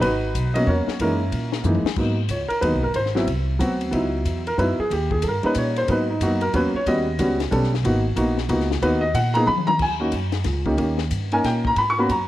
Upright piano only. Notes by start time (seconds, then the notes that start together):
0.01 D#4 F#4 B4
0.54 F#3 A#3 B3 C#4 D#5
0.67 F#4 A#4 C#5
1.01 E3 G#3 A#3 C#4 D#4 E4 A#4
1.65 E3 G#3 A#3 D#4
1.97 F#3 A#3 B3 D#4
2.31 C#5
2.48 A#4
2.61 F#3 A#3 B3 D#4 B4
2.83 A#4
2.96 C5
3.15 F#3 B3 C4 E4
3.59 F#3 B3 C4 F#4
3.91 F#3 B3 D#4 E4
4.47 A#4
4.58 F#3 B3 D#4 E4 B4
4.80 G#4
4.93 G4
5.12 G#4
5.23 A4
5.28 A#4
5.43 G3 A#3 C#4 D#4 B4
5.58 C#5
5.78 C5
5.88 F#3 A#3 B3 D#4 A#4 B4
6.10 D#4
6.22 F#3 A#3 B3 D#4 F#4
6.42 A#4
6.54 F#3 A#3 B3 C#4 B4
6.76 C#5
6.87 G3 B3 C#4 F#4 D#5
7.19 G3 B3 C#4 F#4
7.51 G3 B3 C#4 A4
7.84 A#3 B3 D#4 F#4
8.16 A#3 B3 D#4 F#4
8.49 A#3 B3 D#4 F#4
8.82 A#3 B3 D#4 F#4 B4
9.01 D#5
9.15 F#5
9.34 A#3 B3 D#4 G#4 A#5
9.47 B5
9.67 A#5
9.82 G#5
10.00 A#3 C#4 D#4 F#4
10.66 A#3 C#4 D#4 G4
10.77 A#3 C#4 D#4 G4
11.32 A#3 C#4 D#4 A#4 G#5
11.45 G5
11.67 A#5
11.78 B5
11.90 C#6
11.98 A#3 B3 C#4 F#4 B5
12.11 A#5